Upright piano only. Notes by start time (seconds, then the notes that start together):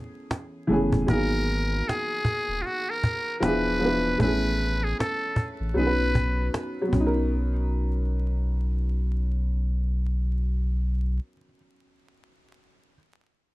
Already playing: G#4
0.67 E3 A3 B3
0.72 C#4 G#4
1.07 F#3 A#3 B3
1.11 D#4 G#4
3.40 F3 B3 D4
3.45 E4 G#4
3.79 F3 B3 D4
3.84 E4 B4
4.18 A3 B3 C#4
4.23 E4 G#4
5.74 F#3 B3 C#4
5.79 D#4 G#4
5.87 B4
6.82 F#3
6.88 B3
6.94 C#4
7.00 D#4
7.06 A#4